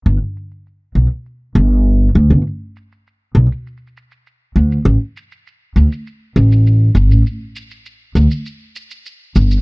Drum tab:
SH |------x--x--x-----x--x--x--------x--x-----x-----|x-----x--x--x-----x--x--x-x-x-x--x--x-----x--x--|x-----x--x--x-----x--x--x-----x--x--x-----x--x--|x-----x--x--x-----x--x--x-----x--x--x-----x--x--|